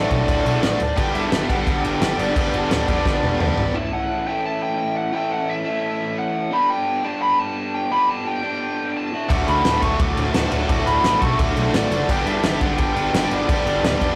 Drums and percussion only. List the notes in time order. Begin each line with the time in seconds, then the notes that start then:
0.11 kick, crash
0.28 kick, crash
0.46 crash
0.63 snare, crash
0.80 crash
0.97 kick, crash
1.15 crash
1.32 snare, crash
1.50 kick, crash
1.67 kick, crash
1.84 crash
2.02 snare, crash
2.19 crash
2.36 kick, crash
2.54 crash
2.71 snare, crash
2.88 kick, crash
3.05 kick, snare
3.23 high tom
3.40 mid tom
3.58 floor tom
9.30 kick, crash
9.48 crash
9.65 snare, crash
9.82 kick, crash
9.99 kick, crash
10.17 crash
10.34 snare, crash
10.52 crash
10.69 kick, crash
10.87 crash
11.04 snare, crash
11.22 kick, crash
11.39 kick, crash
11.57 crash
11.74 snare, crash
11.92 crash
12.09 kick, crash
12.27 crash
12.43 snare, crash
12.61 kick, crash
12.78 kick, crash
12.96 crash
13.14 snare, crash
13.31 crash
13.49 kick, crash
13.67 crash
13.84 snare, crash
14.01 kick, crash